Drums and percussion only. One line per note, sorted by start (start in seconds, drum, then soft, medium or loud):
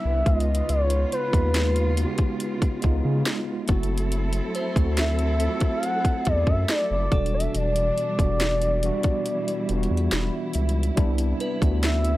0.26 kick loud
0.26 closed hi-hat soft
0.40 closed hi-hat soft
0.55 closed hi-hat medium
0.69 closed hi-hat medium
0.90 closed hi-hat medium
1.12 closed hi-hat soft
1.33 kick loud
1.33 closed hi-hat medium
1.54 snare loud
1.54 closed hi-hat medium
1.76 closed hi-hat soft
1.97 closed hi-hat medium
2.18 kick medium
2.18 closed hi-hat medium
2.40 closed hi-hat medium
2.62 kick medium
2.62 closed hi-hat medium
2.82 kick medium
2.82 closed hi-hat medium
3.26 snare loud
3.26 closed hi-hat medium
3.68 kick loud
3.68 closed hi-hat soft
3.68 open hi-hat medium
3.83 closed hi-hat soft
3.98 closed hi-hat medium
4.12 closed hi-hat medium
4.33 closed hi-hat medium
4.55 closed hi-hat soft
4.76 kick loud
4.76 closed hi-hat medium
4.97 snare loud
4.97 closed hi-hat medium
5.19 closed hi-hat medium
5.40 closed hi-hat medium
5.60 kick loud
5.60 closed hi-hat medium
5.83 closed hi-hat medium
6.05 kick medium
6.05 closed hi-hat medium
6.25 kick medium
6.25 closed hi-hat medium
6.47 kick medium
6.69 snare loud
6.69 closed hi-hat medium
7.12 kick loud
7.12 closed hi-hat soft
7.26 closed hi-hat medium
7.40 closed hi-hat medium
7.55 closed hi-hat medium
7.76 closed hi-hat medium
7.98 closed hi-hat soft
8.19 kick loud
8.19 closed hi-hat medium
8.40 snare loud
8.40 closed hi-hat medium
8.62 closed hi-hat medium
8.83 closed hi-hat medium
9.03 kick medium
9.03 closed hi-hat medium
9.26 closed hi-hat medium
9.48 closed hi-hat medium
9.69 closed hi-hat soft
9.83 closed hi-hat soft
9.97 closed hi-hat soft
10.11 snare loud
10.11 closed hi-hat medium
10.53 closed hi-hat medium
10.53 open hi-hat medium
10.69 closed hi-hat medium
10.83 closed hi-hat soft
10.97 kick loud
10.97 closed hi-hat medium
11.18 closed hi-hat medium
11.40 closed hi-hat soft
11.62 kick loud
11.62 closed hi-hat medium
11.83 snare loud
11.83 closed hi-hat medium
12.05 closed hi-hat soft